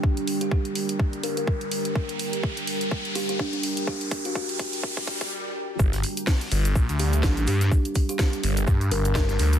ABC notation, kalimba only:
X:1
M:4/4
L:1/16
Q:"Swing 16ths" 1/4=125
K:Gm
V:1 name="Kalimba"
z3 G G z4 z B B z4 | z8 z2 G G D D z2 | G z2 ^F F z8 z3 | z8 z2 G G D D G z |
z3 G G z4 z B B z4 |]